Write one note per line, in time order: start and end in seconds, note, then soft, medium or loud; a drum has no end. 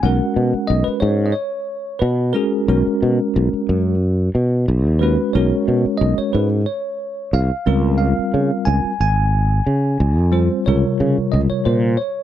0.03 0.19 B1 medium
0.03 1.29 G#3 medium
0.03 1.29 C#4 medium
0.03 1.29 F#4 medium
0.03 1.29 A#4 medium
0.03 0.72 F#5 medium
0.36 0.52 B2 medium
0.54 muted fretless electric bass stroke soft
0.67 0.86 B1 medium
0.67 0.87 D#5 medium
0.84 1.00 B4 medium
0.84 muted fretless electric bass stroke soft
1.00 1.32 G#2 medium
1.00 1.29 C#5 medium
1.26 1.34 D#5 medium
1.32 2.03 C#5 medium
1.99 2.32 B2 medium
1.99 2.35 B4 medium
2.33 2.66 G#3 medium
2.33 2.66 C#4 medium
2.33 2.67 F#4 medium
2.33 2.67 G#4 medium
2.33 2.68 A#4 medium
2.68 2.84 B1 medium
2.68 3.94 G#3 medium
2.68 3.94 C#4 medium
2.68 3.94 F#4 medium
2.68 3.94 A#4 medium
2.87 muted fretless electric bass stroke soft
3.03 3.18 B2 medium
3.36 3.52 B1 medium
3.53 muted fretless electric bass stroke soft
3.69 4.28 F#2 medium
4.35 4.65 B2 medium
4.68 4.86 B1 medium
4.86 5.16 D#2 medium
4.99 5.33 G#3 medium
4.99 5.33 C#4 medium
4.99 5.33 F#4 medium
4.99 5.02 B4 medium
4.99 5.33 B4 medium
5.33 5.51 B1 medium
5.33 6.60 G#3 medium
5.33 6.60 C#4 medium
5.33 6.60 F#4 medium
5.33 6.60 A#4 medium
5.33 6.03 C#5 medium
5.68 5.84 B2 medium
5.85 muted fretless electric bass stroke soft
5.97 6.17 B1 medium
5.97 6.18 D#5 medium
6.18 6.35 C#5 medium
6.18 muted fretless electric bass stroke soft
6.33 6.64 G#2 medium
6.33 6.48 B4 medium
6.66 7.36 C#5 medium
7.33 7.49 C2 loud
7.33 7.97 F5 medium
7.66 8.13 C#2 medium
7.66 8.92 G3 medium
7.66 8.92 C4 medium
7.66 8.92 F4 medium
7.66 8.92 A#4 medium
7.98 8.68 F5 medium
8.19 muted fretless electric bass stroke soft
8.34 8.50 C#3 medium
8.65 8.83 C#2 medium
8.65 9.00 G#5 medium
8.85 muted fretless electric bass stroke soft
9.00 9.60 G#1 medium
9.00 10.38 G#5 medium
9.66 9.96 C#3 medium
10.00 10.18 C#2 medium
10.18 10.48 F2 medium
10.32 10.64 G3 medium
10.32 10.64 C4 medium
10.32 10.64 F4 medium
10.32 10.64 C5 medium
10.66 10.83 C#2 medium
10.66 11.92 C3 medium
10.66 11.92 G3 medium
10.66 11.93 F4 medium
10.66 11.93 A#4 medium
10.66 11.35 C#5 medium
11.00 11.16 C#3 medium
11.18 muted fretless electric bass stroke soft
11.32 11.49 C#2 medium
11.32 11.40 D#5 medium
11.50 11.66 C#5 medium
11.50 muted fretless electric bass stroke soft
11.65 11.96 A#2 medium
11.65 12.00 C5 medium
11.97 12.23 C#5 medium